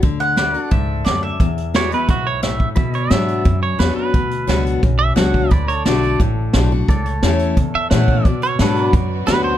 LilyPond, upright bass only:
\new Staff \with { instrumentName = "Upright bass" } { \clef bass \time 4/4 \key b \dorian \tempo 4 = 175 d,2 cis,4 d,4 | e,2 b,,2 | b,4 gis,4 fis,4 e,8 r8 | d,4 cis,4 b,,4 cis,4 |
d,4 b,,4 a,,4 b,,4 | cis,4 e,4 cis8 r8 bes,4 | b,4 gis,4 fis,4 d,4 | }